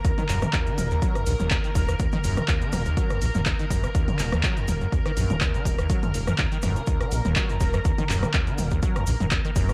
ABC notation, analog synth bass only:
X:1
M:4/4
L:1/16
Q:"Swing 16ths" 1/4=123
K:Ebm
V:1 name="Analog synth bass" clef=bass
z2 E,,, z3 E,,, z3 B,,, E,,, z2 E,,, z | z2 E,,, z3 E,,, z3 B,,, E,,, z2 E,,, z | z2 E,,, z3 E,,, z3 B,,, E,,, z2 E,,, z | z2 E,,, z3 E,,, z3 B,,, E,,, z2 E,,, z |
z2 E,,, z3 E,,, z3 B,,, E,,, z2 E,,, z |]